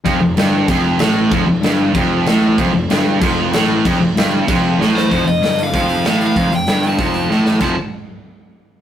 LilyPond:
<<
  \new Staff \with { instrumentName = "Overdriven electric guitar" } { \time 4/4 \key f \major \tempo 4 = 190 r1 | r1 | r1 | r2. r8 c''8~ |
c''8 ees''4 f''2 f''8~ | f''8 g''4 a''8 a''4. r8 | a''8 r2. r8 | }
  \new Staff \with { instrumentName = "Distorted electric guitar" } { \clef bass \time 4/4 \key f \major f,8 f,8 g,4 f,4 a,4 | f,8 f,8 g,4 f,4 a,4 | f,8 f,8 g,4 f,4 a,4 | f,8 f,8 g,4 f,4 a,4 |
f,8 f,8 g,4 f,4 a,4 | f,8 f,8 g,4 f,4 a,4 | <f, c f>8 r2. r8 | }
  \new Staff \with { instrumentName = "Distorted electric guitar" } { \clef bass \time 4/4 \key f \major f,8 f,8 g,4 f,4 a,4 | f,8 f,8 g,4 f,4 a,4 | f,8 f,8 g,4 f,4 a,4 | f,8 f,8 g,4 f,4 a,4 |
f,8 f,8 g,4 f,4 a,4 | f,8 f,8 g,4 f,4 a,4 | <f, c f>8 r2. r8 | }
  \new Staff \with { instrumentName = "Picked electric bass" } { \clef bass \time 4/4 \key f \major f,,8 f,,8 g,,4 f,,4 a,,4 | f,,8 f,,8 g,,4 f,,4 a,,4 | f,,8 f,,8 g,,4 f,,4 a,,4 | f,,8 f,,8 g,,4 f,,4 a,,4 |
f,,8 f,,8 g,,4 f,,4 a,,4 | f,,8 f,,8 g,,4 f,,4 a,,4 | f,,8 r2. r8 | }
  \new DrumStaff \with { instrumentName = "Drums" } \drummode { \time 4/4 <cymc bd>4 <cymc sn>4 <cymc bd>4 <cymc sn>4 | <cymc bd>4 <cymc sn>4 <cymc bd>4 <cymc sn>4 | <cymc bd>4 <cymc sn>4 <cymc bd>4 <cymc sn>4 | <cymc bd>4 <cymc sn>4 <cymc bd>4 sn8 sn8 |
<hho bd>8 hho8 <hho sn>8 hho8 <hho bd>8 hho8 <hho sn>8 hho8 | <hho bd>8 hho8 <hho sn>8 hho8 <hho bd>8 hho8 sn8 sn8 | <cymc bd>4 r4 r4 r4 | }
>>